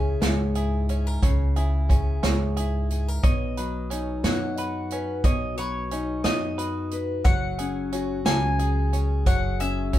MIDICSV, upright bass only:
0, 0, Header, 1, 2, 480
1, 0, Start_track
1, 0, Key_signature, 5, "major"
1, 0, Tempo, 670391
1, 875, Time_signature, 6, 3, 24, 8
1, 7152, End_track
2, 0, Start_track
2, 0, Title_t, "Upright bass"
2, 0, Program_c, 0, 32
2, 0, Note_on_c, 0, 37, 85
2, 124, Note_off_c, 0, 37, 0
2, 147, Note_on_c, 0, 37, 88
2, 842, Note_off_c, 0, 37, 0
2, 877, Note_on_c, 0, 37, 83
2, 1567, Note_off_c, 0, 37, 0
2, 1595, Note_on_c, 0, 37, 89
2, 2287, Note_off_c, 0, 37, 0
2, 2317, Note_on_c, 0, 35, 81
2, 3007, Note_off_c, 0, 35, 0
2, 3031, Note_on_c, 0, 42, 82
2, 3724, Note_off_c, 0, 42, 0
2, 3752, Note_on_c, 0, 35, 91
2, 4445, Note_off_c, 0, 35, 0
2, 4469, Note_on_c, 0, 42, 88
2, 5163, Note_off_c, 0, 42, 0
2, 5189, Note_on_c, 0, 30, 91
2, 5882, Note_off_c, 0, 30, 0
2, 5907, Note_on_c, 0, 37, 95
2, 6601, Note_off_c, 0, 37, 0
2, 6631, Note_on_c, 0, 30, 87
2, 7152, Note_off_c, 0, 30, 0
2, 7152, End_track
0, 0, End_of_file